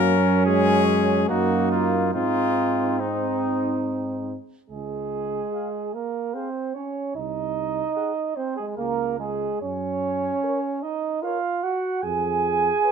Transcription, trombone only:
Already playing: A#3
0.46 C#4
1.29 A#3
2.13 C4
4.70 G#3
5.94 A#3
6.34 C4
6.76 C#4
7.16 D#4
8.37 C4
8.59 G#3
8.78 A#3
9.20 G#3
9.63 C#4
10.83 D#4
11.22 F4
11.63 F#4
12.03 G#4

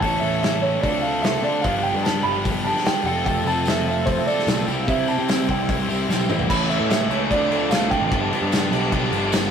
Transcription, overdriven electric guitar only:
0.02 E3 A3 C#4 A4
0.22 A3 C#4 A4
0.43 E3 A3 C#4 A4
0.82 F3 A3 D4 A4
1.02 A3 D4 A4
1.24 F3 A3 D4 A4
1.44 A3 D4 A4
1.64 F3 B3 D4 G4
1.86 B3 D4 G4
2.06 F3 B3 D4 G4
2.66 B3 D4 G4
2.87 F3 B3 D4 G4
3.06 F3 C4 F4 A4
3.26 F3 C4 F4 A4
3.47 C4 F4 A4
3.68 F3 C4 F4 A4
4.28 C4 F4 A4
4.47 F3 C4 F4 A4
4.67 G3 C4 E4 G4
4.88 G3 C4 E4 G4
5.08 C4 E4 G4
5.28 G3 C4 E4 G4
5.88 C4 E4 G4
6.08 G3 C4 E4 G4
6.29 C4 E4 G4
6.50 E3 A3 C#4
6.70 E3 A3 C#4
6.89 E3 A3 C#4
7.10 E3 A3 C#4
7.31 F3 A3 D4
7.51 F3 A3 D4
7.71 F3 A3 D4
7.92 F3 A3 D4
8.12 F3 B3 D4
8.32 F3 B3 D4
8.52 F3 B3 D4
8.72 F3 B3 D4
8.92 F3 B3 D4
9.11 F3 B3 D4
9.31 F3 B3 D4

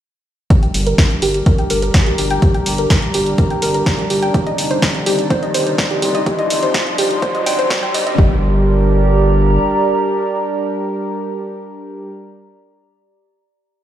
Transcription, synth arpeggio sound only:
0.50 G4
0.63 G5
0.87 A#4
1.22 G4
1.46 A#4
1.59 G5
1.70 A#4
1.83 A#4
2.07 G4
2.18 G4
2.31 G5
2.42 G4
2.55 G5
2.79 A#4
3.14 G4
3.38 A#4
3.51 G5
3.62 A#4
3.75 A#4
3.99 G4
4.10 G4
4.22 G5
4.34 G4
4.47 D#5
4.71 C5
5.06 G4
5.30 C5
5.42 D#5
5.54 C5
5.67 C5
5.91 G4
6.02 G4
6.14 D#5
6.26 G4
6.39 D#5
6.63 C5
6.98 G4
7.22 C5
7.35 D#5
7.46 G5
7.58 C5
7.83 G5
7.94 D#5
8.07 D#5
8.18 G4

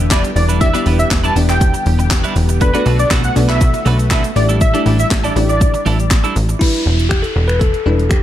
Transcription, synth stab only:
0.61 B3 D4 E4 G4 D5
0.74 B3 D4 E4 G4 D5
1.36 B3 D4 E4 G4 D5
2.61 B3 D4 F#4 A4 D5
2.74 B3 D4 F#4 A4 D5
3.36 B3 D4 F#4 A4 D5
4.36 A3 D4 E4 G4 D5
4.74 A3 D4 E4 G4 D5
5.36 A3 D4 E4 G4 D5
6.61 G3 D4 E4 B4
7.86 G3 D4 E4 B4

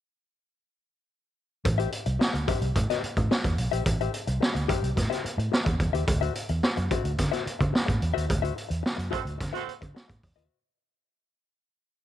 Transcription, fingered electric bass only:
1.66 A1
2.06 C2
2.34 D2
2.62 C2
2.76 A2
3.03 muted fingered electric bass stroke
3.17 A2
3.45 E2
3.58 B1
3.73 A#1
3.86 A1
4.27 C2
4.55 D2
4.83 C2
4.97 A2
5.25 muted fingered electric bass stroke
5.38 A2
5.66 E2
5.80 E2
5.94 D#2
6.08 D2
6.49 E2
6.77 F#2
7.04 D2
7.19 D3
7.46 muted fingered electric bass stroke
7.61 D3
7.88 A2
8.02 E2
8.16 D#2
8.30 D2
8.70 E2
8.98 F#2
9.25 D2
9.41 D3
9.68 muted fingered electric bass stroke
9.82 D3
10.10 A2
10.23 E2
10.36 D#2

